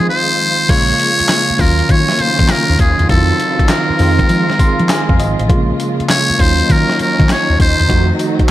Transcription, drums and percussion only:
0.69 kick, closed hi-hat, crash
0.99 closed hi-hat, tambourine
1.20 closed hi-hat
1.28 snare, clap, closed hi-hat, tambourine
1.59 kick, open hi-hat, tambourine
1.79 closed hi-hat
1.89 kick, closed hi-hat, tambourine
2.09 snare
2.19 closed hi-hat, tambourine
2.39 kick, closed hi-hat
2.48 snare, clap, closed hi-hat, tambourine
2.79 kick, closed hi-hat, tambourine
2.99 closed hi-hat
3.09 kick, closed hi-hat
3.40 closed hi-hat, tambourine
3.59 kick, closed hi-hat
3.69 snare, clap, closed hi-hat, tambourine
3.99 open hi-hat, tambourine
4.19 kick, closed hi-hat
4.29 closed hi-hat, tambourine
4.50 snare
4.59 kick, closed hi-hat, tambourine
4.79 closed hi-hat
4.89 snare, clap, closed hi-hat, tambourine
5.09 kick
5.20 closed hi-hat, tambourine
5.39 closed hi-hat
5.49 kick, closed hi-hat
5.80 closed hi-hat, tambourine
6.00 closed hi-hat
6.09 snare, clap, closed hi-hat, tambourine
6.39 kick, open hi-hat, tambourine
6.59 closed hi-hat
6.69 kick, closed hi-hat, tambourine
6.89 snare
6.99 closed hi-hat, tambourine
7.19 kick, closed hi-hat
7.29 snare, clap, closed hi-hat, tambourine
7.60 kick, closed hi-hat, tambourine
7.79 closed hi-hat
7.90 kick, closed hi-hat
8.19 closed hi-hat, tambourine
8.39 kick, closed hi-hat

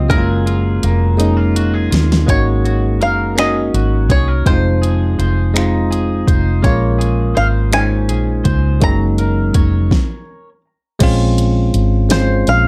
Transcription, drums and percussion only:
0.10 kick, closed hi-hat
0.47 closed hi-hat
0.83 closed hi-hat
1.20 closed hi-hat
1.56 closed hi-hat
1.92 snare, closed hi-hat
2.12 snare
2.28 kick, closed hi-hat
2.66 closed hi-hat
3.02 closed hi-hat
3.38 finger snap, closed hi-hat
3.74 closed hi-hat
4.10 kick, closed hi-hat
4.46 kick, closed hi-hat
4.83 closed hi-hat
5.20 closed hi-hat
5.56 finger snap, closed hi-hat
5.92 closed hi-hat
6.28 kick, closed hi-hat
6.64 kick, closed hi-hat
7.01 closed hi-hat
7.37 closed hi-hat
7.72 finger snap, closed hi-hat
8.09 closed hi-hat
8.45 kick, closed hi-hat
8.81 kick, closed hi-hat
9.18 closed hi-hat
9.54 kick, closed hi-hat
9.91 kick, snare
11.00 kick, closed hi-hat, crash
11.38 closed hi-hat
11.74 closed hi-hat
12.10 snare, closed hi-hat
12.47 closed hi-hat

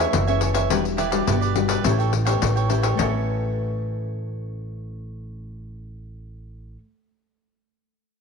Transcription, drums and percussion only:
0.13 pandeiro
0.28 pandeiro
0.41 pandeiro
0.55 pandeiro
0.70 pandeiro
0.85 pandeiro
0.98 pandeiro
1.12 pandeiro
1.27 pandeiro
1.42 pandeiro
1.56 pandeiro
1.69 pandeiro
1.84 pandeiro
2.00 pandeiro
2.13 pandeiro
2.27 pandeiro
2.42 pandeiro
2.57 pandeiro
2.70 pandeiro
2.83 pandeiro
2.99 pandeiro

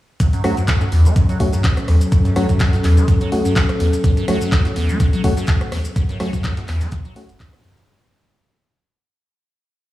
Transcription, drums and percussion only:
0.20 kick, closed hi-hat, maracas
0.33 closed hi-hat, maracas
0.44 cross-stick, closed hi-hat, open hi-hat
0.57 closed hi-hat, maracas
0.68 kick, snare, clap, closed hi-hat, maracas
0.81 closed hi-hat, maracas
0.92 closed hi-hat, open hi-hat
1.05 closed hi-hat, maracas
1.16 kick, closed hi-hat, maracas
1.29 closed hi-hat, maracas
1.40 kick, closed hi-hat, open hi-hat
1.53 snare, closed hi-hat, maracas
1.64 kick, snare, clap, closed hi-hat, maracas
1.77 cross-stick, closed hi-hat, maracas
1.88 cross-stick, snare, open hi-hat
2.01 closed hi-hat, maracas
2.12 kick, closed hi-hat, maracas
2.25 snare, closed hi-hat, maracas
2.36 cross-stick, closed hi-hat, open hi-hat
2.49 kick, closed hi-hat, maracas
2.60 kick, snare, clap, closed hi-hat, maracas
2.73 closed hi-hat, maracas
2.84 clap, closed hi-hat, open hi-hat
2.97 closed hi-hat, maracas
3.08 kick, closed hi-hat, maracas
3.21 closed hi-hat, maracas
3.32 closed hi-hat, open hi-hat
3.45 closed hi-hat, maracas
3.56 kick, snare, clap, closed hi-hat, maracas
3.69 cross-stick, closed hi-hat, maracas
3.80 closed hi-hat, open hi-hat
3.93 snare, closed hi-hat, maracas
4.04 kick, closed hi-hat, maracas
4.17 closed hi-hat, maracas
4.28 cross-stick, closed hi-hat, open hi-hat
4.41 closed hi-hat, maracas
4.52 kick, snare, clap, closed hi-hat, maracas
4.65 closed hi-hat, maracas
4.76 closed hi-hat, open hi-hat
4.89 closed hi-hat, maracas
5.00 kick, closed hi-hat, maracas
5.13 closed hi-hat, maracas
5.24 kick, closed hi-hat, open hi-hat
5.37 snare, closed hi-hat, maracas
5.47 kick, snare, clap, closed hi-hat, maracas
5.60 cross-stick, closed hi-hat, maracas
5.72 cross-stick, snare, open hi-hat
5.85 closed hi-hat, maracas
5.96 kick, closed hi-hat, maracas
6.09 snare, closed hi-hat, maracas
6.20 cross-stick, snare, closed hi-hat, open hi-hat
6.33 kick, closed hi-hat, maracas
6.44 kick, snare, clap, closed hi-hat, open hi-hat, maracas
6.57 snare, closed hi-hat, maracas
6.68 clap, open hi-hat
6.81 snare, closed hi-hat, open hi-hat, maracas
6.92 kick, snare, closed hi-hat, maracas
7.05 closed hi-hat, maracas
7.16 snare, open hi-hat
7.29 closed hi-hat, maracas
7.40 kick, snare, clap, closed hi-hat, maracas
7.53 cross-stick, closed hi-hat, maracas
7.64 closed hi-hat, open hi-hat
7.77 snare, closed hi-hat, maracas

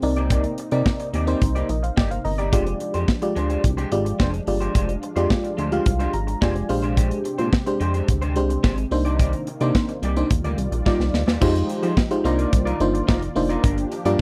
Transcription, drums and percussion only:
0.02 open hi-hat
0.16 closed hi-hat
0.30 kick, closed hi-hat
0.44 closed hi-hat
0.58 closed hi-hat
0.71 closed hi-hat
0.86 kick, snare
1.00 closed hi-hat
1.14 closed hi-hat
1.27 closed hi-hat
1.42 kick, closed hi-hat
1.56 closed hi-hat
1.69 closed hi-hat
1.84 closed hi-hat
1.97 kick, snare
2.11 closed hi-hat
2.25 open hi-hat
2.39 closed hi-hat
2.53 kick, closed hi-hat
2.67 closed hi-hat
2.80 closed hi-hat
2.94 closed hi-hat
3.08 kick, snare
3.22 closed hi-hat
3.36 closed hi-hat
3.50 closed hi-hat
3.64 kick, closed hi-hat
3.78 closed hi-hat
3.92 closed hi-hat
4.06 closed hi-hat
4.20 kick, snare
4.34 closed hi-hat
4.47 open hi-hat
4.61 closed hi-hat
4.75 kick, closed hi-hat
4.89 closed hi-hat
5.03 closed hi-hat
5.16 closed hi-hat
5.30 kick, snare
5.44 closed hi-hat
5.58 closed hi-hat
5.72 closed hi-hat
5.86 kick, closed hi-hat
6.00 closed hi-hat
6.13 closed hi-hat
6.28 closed hi-hat
6.42 kick, snare
6.56 closed hi-hat
6.69 open hi-hat
6.83 closed hi-hat
6.97 kick, closed hi-hat
7.11 closed hi-hat
7.25 closed hi-hat
7.39 closed hi-hat
7.53 kick, snare
7.67 closed hi-hat
7.81 closed hi-hat
7.94 closed hi-hat
8.08 kick, closed hi-hat
8.22 closed hi-hat
8.36 closed hi-hat
8.50 closed hi-hat
8.64 kick, snare
8.78 closed hi-hat
8.91 open hi-hat
9.06 closed hi-hat
9.19 kick, closed hi-hat
9.33 closed hi-hat
9.47 closed hi-hat
9.61 closed hi-hat
9.75 kick, snare
9.89 closed hi-hat
10.03 closed hi-hat
10.16 closed hi-hat
10.30 kick, closed hi-hat
10.44 closed hi-hat
10.58 closed hi-hat
10.72 closed hi-hat
10.86 kick, snare
11.00 snare
11.14 snare
11.28 snare
11.42 kick, crash
11.55 closed hi-hat
11.69 closed hi-hat
11.83 closed hi-hat
11.97 kick, snare
12.11 closed hi-hat
12.25 closed hi-hat
12.39 closed hi-hat
12.53 kick, closed hi-hat
12.67 closed hi-hat
12.80 closed hi-hat
12.95 closed hi-hat
13.09 kick, snare
13.22 closed hi-hat
13.36 open hi-hat
13.50 closed hi-hat
13.64 kick, closed hi-hat
13.78 closed hi-hat
13.92 closed hi-hat
14.05 closed hi-hat

